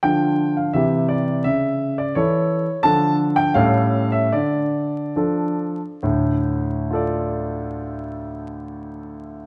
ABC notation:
X:1
M:2/4
L:1/16
Q:1/4=74
K:Dm
V:1 name="Grand piano"
g3 f e2 d2 | e3 d ^c4 | a3 g f3 e | d6 z2 |
z4 [FAd]4- | [FAd]8 |]
V:2 name="Grand piano" clef=bass
[D,F,DF]4 [C,E,EG]4 | ^C,4 [E,EA]4 | [D,F,DA]4 [A,,G,^CA]4 | D,4 [F,DA]4 |
[D,,A,,]8- | [D,,A,,]8 |]